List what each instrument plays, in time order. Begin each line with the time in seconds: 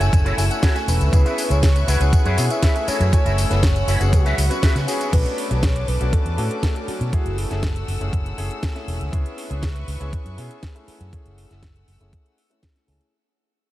Already playing: string section A3 F#5 E6, soft synth lead G#5
0.00 fingered electric bass F#1, grand piano A3 C#4 E4 G#5, closed hi-hat, tambourine
0.13 muted clean electric guitar stroke, kick, closed hi-hat, tambourine
0.25 clean electric guitar E4 F#4 A4 C#5, closed hi-hat, tambourine
0.37 fingered electric bass F#1, grand piano A3 C#4 E4 G#5, open hi-hat, tambourine
0.51 soft synth lead F#5, closed hi-hat, tambourine
0.62 clean electric guitar E4 F#4 A4 C#5, kick, snare, closed hi-hat, tambourine
0.75 grand piano A3 C#4 E4 G#5, snare, closed hi-hat, tambourine
0.87 fingered electric bass E1, soft synth lead B4, muted clean electric guitar stroke, open hi-hat, tambourine
1.01 fingered electric bass C#2, closed hi-hat, tambourine
1.12 fingered electric bass C#2, grand piano B3 C#4 E4 G#4, string section B4 E5 C#6, muted clean electric guitar stroke, kick, closed hi-hat, tambourine
1.25 clean electric guitar E4 G#4 B4 E5, closed hi-hat, tambourine
1.38 open hi-hat, tambourine
1.50 fingered electric bass C#2, grand piano B3 C#4 E4 G#4, soft synth lead C#5, closed hi-hat, tambourine
1.63 kick, snare, closed hi-hat, tambourine
1.76 closed hi-hat, tambourine
1.87 fingered electric bass C#2, clean electric guitar E4 G#4 B4 C#5, soft synth lead F#5, open hi-hat, tambourine
2.00 fingered electric bass C#2, grand piano B3 C#4 E4 G#4, closed hi-hat, tambourine
2.12 muted clean electric guitar stroke, kick, closed hi-hat, tambourine
2.25 fingered electric bass F#2, clean electric guitar E4 G#4 B4 C#5, closed hi-hat, tambourine
2.37 fingered electric bass B2, grand piano B3 C#4 E4 G#4, open hi-hat, tambourine
2.50 soft synth lead E5, closed hi-hat, tambourine
2.63 clean electric guitar E4 G#4 B4 E5, kick, snare, closed hi-hat, tambourine
2.75 grand piano A3 C#4 E4 G#4, closed hi-hat, tambourine
2.87 string section A3 F#5 E6, clean electric guitar E4 F#4 A4 C#5, soft synth lead C#5, muted fingered electric bass stroke, open hi-hat, tambourine
3.00 fingered electric bass F#2, closed hi-hat, tambourine
3.12 grand piano A3 C#4 E4 G#5, soft synth lead C#5, kick, closed hi-hat, tambourine
3.25 fingered electric bass F#1, clean electric guitar E4 F#4 A4 E5, closed hi-hat, tambourine
3.38 open hi-hat, tambourine
3.50 fingered electric bass F#1, grand piano A3 C#4 E4 G#4, soft synth lead B4, snare, closed hi-hat, tambourine
3.63 soft synth lead C#5, kick, snare, closed hi-hat, tambourine
3.76 closed hi-hat, tambourine
3.88 fingered electric bass F#1, clean electric guitar E4 F#4 A4 C#5, open hi-hat, tambourine
4.00 fingered electric bass F#1, grand piano B3 C#4 F#4 G#4, closed hi-hat, tambourine
4.12 fingered electric bass C#2, soft synth lead F#4, string section B4 C#6, muted clean electric guitar stroke, kick, closed hi-hat, tambourine
4.25 clean electric guitar F#4 G#4 B4 E5, closed hi-hat, tambourine
4.38 fingered electric bass C#2, open hi-hat, tambourine
4.50 grand piano B3 C#4 F#4 B4, closed hi-hat, tambourine
4.62 clean electric guitar F#4 G#4 B4 E5, kick, snare, closed hi-hat, tambourine
4.76 fingered electric bass C#3, snare, closed hi-hat, tambourine
4.87 grand piano B3 C#4 F#4 G#4, muted clean electric guitar stroke, open hi-hat, tambourine
5.01 closed hi-hat, tambourine
5.12 fingered electric bass B1, grand piano A3 C#4 D4 F#4, string section B4 A5 D6, soft synth lead B4, kick, closed hi-hat, crash
5.26 closed hi-hat
5.38 open hi-hat
5.50 fingered electric bass B1, grand piano A3 C#4 D4 F#4, closed hi-hat
5.63 soft synth lead C#5, kick, snare, closed hi-hat
5.76 closed hi-hat
5.88 fingered electric bass B1, soft synth lead B4, open hi-hat
6.00 fingered electric bass B1, grand piano A3 C#4 D4 F#4, closed hi-hat
6.13 soft synth lead A4, kick, closed hi-hat
6.26 fingered electric bass E2, closed hi-hat
6.37 fingered electric bass A2, grand piano A3 C#4 D4 F#4, soft synth lead A4, open hi-hat
6.51 closed hi-hat
6.63 kick, snare, closed hi-hat
6.75 grand piano A3 C#4 D4 F#4, closed hi-hat
6.88 soft synth lead F#4, muted fingered electric bass stroke, open hi-hat
7.01 fingered electric bass B2, closed hi-hat
7.12 grand piano A3 C#4 E4 G#4, string section A3 F#5 E6, soft synth lead F#4, muted fingered electric bass stroke, kick, closed hi-hat
7.26 fingered electric bass F#1, closed hi-hat
7.38 soft synth lead A4, open hi-hat
7.50 fingered electric bass F#1, grand piano A3 C#4 E4 G#4, snare, closed hi-hat
7.63 kick, snare, closed hi-hat
7.76 closed hi-hat
7.88 fingered electric bass F#1, open hi-hat
8.00 fingered electric bass F#1, grand piano A3 C#4 E4 G#4, closed hi-hat
8.13 fingered electric bass F#1, kick, closed hi-hat
8.26 closed hi-hat
8.37 fingered electric bass F#1, grand piano A3 C#4 E4 G#4, open hi-hat
8.51 closed hi-hat
8.63 kick, snare, closed hi-hat
8.75 grand piano A3 C#4 E4 G#4, snare, closed hi-hat
8.88 fingered electric bass E1, open hi-hat
9.01 fingered electric bass C#2, closed hi-hat
9.12 fingered electric bass C#2, grand piano B3 C#4 E4 G#4, string section B4 E5 C#6, kick, closed hi-hat
9.26 closed hi-hat
9.38 open hi-hat
9.50 fingered electric bass C#2, grand piano B3 C#4 E4 G#4, closed hi-hat
9.63 kick, snare, closed hi-hat
9.76 closed hi-hat
9.88 fingered electric bass C#2, open hi-hat
10.00 fingered electric bass C#2, grand piano B3 C#4 E4 G#4, closed hi-hat
10.13 kick, closed hi-hat
10.26 fingered electric bass F#2, closed hi-hat
10.37 fingered electric bass B2, grand piano B3 C#4 E4 G#4, open hi-hat
10.51 closed hi-hat
10.63 kick, snare, closed hi-hat
10.75 grand piano A3 C#4 E4 G#4, closed hi-hat
10.88 string section A3 F#5 E6, muted fingered electric bass stroke, open hi-hat
11.01 fingered electric bass F#2, closed hi-hat
11.13 grand piano A3 C#4 E4 G#4, kick, closed hi-hat
11.26 fingered electric bass F#1, closed hi-hat
11.38 open hi-hat
11.50 fingered electric bass F#1, grand piano A3 C#4 E4 G#4, snare, closed hi-hat
11.63 kick, snare, closed hi-hat
11.76 closed hi-hat
11.88 fingered electric bass F#1, open hi-hat
12.00 fingered electric bass F#1, grand piano A3 C#4 E4 G#4, closed hi-hat
12.13 kick, closed hi-hat
12.26 closed hi-hat
12.38 open hi-hat
12.50 grand piano A3 C#4 E4 A4, closed hi-hat
12.63 kick, snare, closed hi-hat
12.76 snare, closed hi-hat
12.88 fingered electric bass C#2, grand piano A3 C#4 E4 G#4, open hi-hat
13.01 closed hi-hat